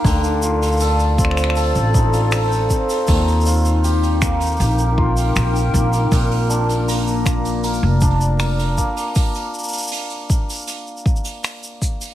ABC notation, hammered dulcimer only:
X:1
M:4/4
L:1/16
Q:1/4=79
K:Bb
V:1 name="Hammered dulcimer"
D,2 F2 A2 C2 A2 E F A2 C2 | E,2 F2 G2 B,2 G2 F2 G2 B,2 | B,,2 D2 B2 B,2 B2 D2 B2 B,2 | z16 |]